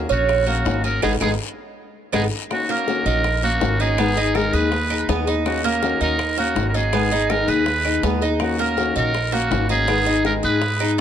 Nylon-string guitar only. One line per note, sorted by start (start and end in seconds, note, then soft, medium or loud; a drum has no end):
0.10 0.47 A#3 soft
0.10 0.47 C#4 soft
0.10 0.46 F#4 medium
0.47 0.65 A#3 soft
0.47 0.65 C#4 soft
0.47 0.65 F#4 medium
0.65 0.83 D#3 medium
0.65 0.84 A#3 medium
0.65 0.84 C#4 medium
0.65 0.83 F#4 medium
0.84 1.02 A#3 soft
0.84 1.02 C#4 medium
0.84 1.02 F#4 medium
1.03 1.15 G#3 loud
1.03 1.14 B3 loud
1.03 1.14 D#4 loud
1.21 1.33 G#3 medium
1.21 1.33 B3 medium
1.21 1.33 D#4 medium
2.14 2.25 G#3 loud
2.14 2.25 B3 medium
2.14 2.25 D#4 loud
2.50 2.68 D#3 medium
2.50 2.68 A#3 medium
2.50 2.69 C#4 medium
2.50 2.68 F#4 medium
2.69 2.86 A#3 soft
2.69 2.87 C#4 soft
2.69 2.87 F#4 soft
2.87 3.23 D#3 medium
2.87 3.23 A#3 medium
2.87 3.23 C#4 medium
2.87 3.24 F#4 medium
3.24 muted nylon-string guitar stroke medium
3.42 3.60 A#3 soft
3.42 3.61 C#4 soft
3.42 3.60 F#4 medium
3.60 3.78 D#3 medium
3.60 3.79 A#3 medium
3.60 3.79 C#4 medium
3.60 3.78 F#4 medium
3.80 3.98 A#3 soft
3.80 3.98 C#4 medium
3.80 3.97 F#4 medium
3.98 4.16 D#3 medium
3.98 4.16 G#3 medium
3.98 4.16 B3 medium
3.98 4.17 D#4 medium
3.98 4.15 G#4 medium
4.16 4.34 B3 soft
4.16 4.35 D#4 soft
4.16 4.34 G#4 soft
4.34 4.71 D#3 medium
4.34 4.71 G#3 medium
4.34 4.71 B3 medium
4.34 4.71 D#4 medium
4.34 4.71 G#4 medium
4.72 muted nylon-string guitar stroke medium
4.90 5.08 B3 soft
4.90 5.08 D#4 soft
4.90 5.08 G#4 soft
5.08 5.26 D#3 medium
5.08 5.26 G#3 medium
5.08 5.27 B3 medium
5.08 5.26 D#4 medium
5.08 5.25 G#4 medium
5.26 5.45 B3 soft
5.26 5.45 D#4 soft
5.26 5.44 G#4 medium
5.45 5.63 D#3 medium
5.45 5.63 A#3 medium
5.45 5.63 C#4 medium
5.45 5.62 F#4 medium
5.64 5.82 A#3 soft
5.64 5.82 C#4 soft
5.82 6.18 D#3 medium
5.82 6.18 A#3 medium
5.82 6.18 C#4 medium
5.82 6.18 F#4 medium
6.19 muted nylon-string guitar stroke medium
6.37 6.55 A#3 soft
6.37 6.55 C#4 medium
6.37 6.55 F#4 medium
6.55 6.73 D#3 medium
6.55 6.74 A#3 medium
6.55 6.73 C#4 medium
6.55 6.72 F#4 medium
6.73 6.93 A#3 soft
6.73 6.92 C#4 medium
6.73 6.92 F#4 medium
6.93 7.10 D#3 medium
6.93 7.11 G#3 medium
6.93 7.11 B3 medium
6.93 7.11 D#4 medium
6.93 7.10 G#4 medium
7.11 7.29 B3 soft
7.11 7.30 D#4 soft
7.11 7.29 G#4 medium
7.29 7.65 D#3 medium
7.29 7.65 G#3 medium
7.29 7.66 B3 medium
7.29 7.66 D#4 medium
7.29 7.66 G#4 medium
7.66 muted nylon-string guitar stroke medium
7.84 8.03 B3 soft
7.84 8.03 D#4 soft
7.84 8.02 G#4 soft
8.03 8.21 D#3 medium
8.03 8.21 G#3 medium
8.03 8.21 B3 medium
8.03 8.22 D#4 medium
8.03 8.20 G#4 medium
8.22 8.41 B3 soft
8.22 8.40 D#4 medium
8.22 8.39 G#4 medium
8.40 8.58 D#3 medium
8.40 8.58 A#3 medium
8.40 8.59 C#4 medium
8.40 8.58 F#4 medium
8.60 8.77 A#3 soft
8.60 8.77 C#4 soft
8.77 9.13 D#3 medium
8.77 9.13 A#3 medium
8.77 9.13 C#4 medium
8.77 9.14 F#4 medium
9.14 muted nylon-string guitar stroke medium
9.32 9.50 A#3 soft
9.32 9.51 C#4 soft
9.32 9.50 F#4 soft
9.51 9.69 D#3 medium
9.51 9.69 A#3 medium
9.51 9.69 C#4 medium
9.51 9.68 F#4 medium
9.69 9.88 A#3 soft
9.69 9.88 C#4 soft
9.69 9.87 F#4 medium
9.88 10.06 D#3 medium
9.88 10.06 G#3 medium
9.88 10.06 B3 medium
9.88 10.06 D#4 medium
9.88 10.05 G#4 medium
10.06 10.25 B3 soft
10.06 10.25 D#4 soft
10.06 10.24 G#4 medium
10.25 10.61 D#3 medium
10.25 10.61 G#3 medium
10.25 10.61 B3 medium
10.25 10.61 D#4 medium
10.25 10.62 G#4 medium
10.62 muted nylon-string guitar stroke medium
10.80 10.98 B3 soft
10.80 10.98 D#4 soft
10.80 10.98 G#4 soft